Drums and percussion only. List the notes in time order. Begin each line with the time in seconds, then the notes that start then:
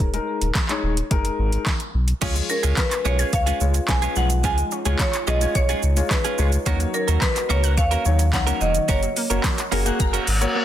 0.00 kick, closed hi-hat
0.14 closed hi-hat
0.41 closed hi-hat
0.55 kick, snare, clap, closed hi-hat
0.69 clap, closed hi-hat
0.97 closed hi-hat
1.11 kick, closed hi-hat
1.25 closed hi-hat
1.52 closed hi-hat
1.67 kick, snare, clap, closed hi-hat
1.80 closed hi-hat
2.08 closed hi-hat
2.22 kick, closed hi-hat, crash, shaker
2.36 closed hi-hat, shaker
2.49 shaker
2.63 closed hi-hat, shaker
2.77 kick, snare, clap, closed hi-hat, shaker
2.91 clap, closed hi-hat, shaker
3.05 shaker
3.19 closed hi-hat, shaker
3.33 kick, closed hi-hat, shaker
3.47 closed hi-hat, shaker
3.60 shaker
3.74 closed hi-hat, shaker
3.88 kick, snare, clap, closed hi-hat, shaker
4.02 closed hi-hat, shaker
4.16 shaker
4.30 closed hi-hat, shaker
4.44 kick, closed hi-hat, shaker
4.58 closed hi-hat, shaker
4.71 shaker
4.85 closed hi-hat, shaker
4.99 kick, snare, clap, closed hi-hat, shaker
5.13 clap, closed hi-hat, shaker
5.27 shaker
5.41 closed hi-hat, shaker
5.55 kick, closed hi-hat, shaker
5.69 closed hi-hat, shaker
5.83 shaker
5.97 closed hi-hat, shaker
6.11 kick, snare, clap, closed hi-hat, shaker
6.25 closed hi-hat, shaker
6.38 shaker
6.52 closed hi-hat, shaker
6.66 kick, closed hi-hat, shaker
6.80 closed hi-hat, shaker
6.94 shaker
7.08 closed hi-hat, shaker
7.22 kick, snare, clap, closed hi-hat, shaker
7.36 clap, closed hi-hat, shaker
7.50 shaker
7.64 closed hi-hat, shaker
7.78 kick, closed hi-hat, shaker
7.91 closed hi-hat, shaker
8.05 shaker
8.19 closed hi-hat, shaker
8.33 kick, snare, clap, closed hi-hat, shaker
8.47 closed hi-hat, shaker
8.61 shaker
8.75 closed hi-hat, shaker
8.89 kick, closed hi-hat, shaker
9.03 closed hi-hat, shaker
9.16 open hi-hat, shaker
9.30 closed hi-hat, shaker
9.44 kick, snare, clap, closed hi-hat, shaker
9.58 clap, closed hi-hat, shaker
9.72 open hi-hat, shaker
9.86 closed hi-hat, shaker
10.00 kick, closed hi-hat, shaker
10.14 closed hi-hat, shaker
10.27 open hi-hat, shaker
10.41 closed hi-hat, shaker